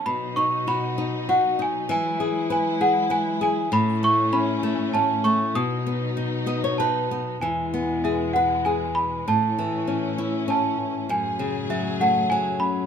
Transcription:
<<
  \new Staff \with { instrumentName = "Celesta" } { \time 3/4 \key e \major \tempo 4 = 98 b''8 cis'''8 b''4 fis''8 gis''8 | gis''4 gis''8 fis''8 gis''8 gis''8 | b''8 cis'''8 b''4 a''8 cis'''8 | dis'''2 a''4 |
gis''4 e''8 fis''8 gis''8 b''8 | a''4. r8 a''4 | gis''4 e''8 fis''8 gis''8 b''8 | }
  \new Staff \with { instrumentName = "Nylon-string guitar" } { \time 3/4 \key e \major << { r2. | r2. | r2. | r4. dis''16 cis''16 b'4 |
r2. | r2. | r2. | } \\ { b,8 dis'8 fis'8 dis'8 fis'8 dis'8 | e8 gis'8 b'8 gis'8 b'8 gis'8 | a,8 a8 cis'8 a8 cis'8 a8 | b,8 b8 dis'8 b8 dis'8 b8 |
e8 b8 gis'8 b'8 gis'4 | a,8 e8 cis'8 e'8 cis'4 | fis,8 cis8 fis8 a8 fis4 | } >> }
  \new Staff \with { instrumentName = "String section" } { \clef bass \time 3/4 \key e \major << { <fis dis'>2. | <gis e'>2. | <e cis'>2. | <fis dis'>2. |
<b, gis>2. | <e cis'>2. | <fis gis'>2. | } \\ { b,2. | r2. | a,2. | b,2. |
e,2. | a,2.~ | a,2. | } >> }
>>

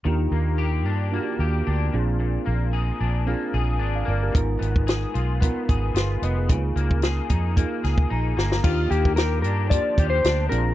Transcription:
<<
  \new Staff \with { instrumentName = "Clean electric guitar" } { \time 4/4 \key ees \major \tempo 4 = 112 r1 | r1 | r1 | r1 |
f'8 g'8 bes'8 bes'8 d''8. c''8. bes'8 | }
  \new Staff \with { instrumentName = "Reed electric piano" } { \time 4/4 \key ees \major << { r1 | r2. r16 <d'' f''>16 <bes' d''>16 <g' bes'>16~ | <g' bes'>16 r2 r8. <aes' ces''>8 <ces'' ees''>16 <aes' ces''>16~ | <aes' ces''>16 r2 r16 aes''8 bes''4 |
r1 | } \\ { <bes d' f' g'>4 r4 <bes d' f' ges' g'>4 r8 <c' d' f' aes'>8~ | <c' d' f' aes'>4 r4 <c' d' f' aes'>4 r4 | <ces' ees' f' bes'>4 r4 <ces' ees' f' bes'>4 r4 | <bes ees' f' aes'>4 r4 <bes ees' f' aes'>4 r4 |
<bes d' f' g'>4 r4 <bes d' f' g'>4 r8 <c' d' f' aes'>8 | } >> }
  \new Staff \with { instrumentName = "Clean electric guitar" } { \time 4/4 \key ees \major ees8 bes8 g'8 d'8 bes8 g'8 d'8 bes,8 | bes,8 bes8 aes'8 d'8 bes8 aes'8 d'8 bes8 | aes,8 ces'8 aes'8 f'8 ces'8 aes'8 f'8 ces'8 | des8 bes8 aes'8 ees'8 bes8 aes'8 ees'8 bes8 |
ees8 bes8 g'8 d'8 f8 g'8 d'8 bes,8 | }
  \new Staff \with { instrumentName = "Fingered electric bass" } { \clef bass \time 4/4 \key ees \major ees,8 ees,4 g,8. r16 ees,8 d,8 bes,,8~ | bes,,8 bes,,4 bes,,8. r16 bes,,8 aes,,8 g,,8 | aes,,8 aes,,4 ces,8. r16 aes,,8 g,,8 f,,8 | des,8 des,4 f,8. r16 des,8 bes,,8 g,,8 |
ees,8 ees,4 g,8. r16 ees,8 d,8 bes,,8 | }
  \new DrumStaff \with { instrumentName = "Drums" } \drummode { \time 4/4 r4 r4 r4 r4 | r4 r4 r4 r4 | <hh bd>8 hh16 bd16 <hh sn>8 hh8 <hh bd>8 <hh bd>8 <hh sn>8 hh8 | <hh bd>8 hh16 bd16 <hh sn>8 <hh bd>8 <hh bd>8 <hh sn>16 bd16 r8 sn16 sn16 |
<cymc bd>8 hh16 bd16 <hh sn>8 hh8 <hh bd>8 <hh bd>8 <hh sn>8 hh8 | }
>>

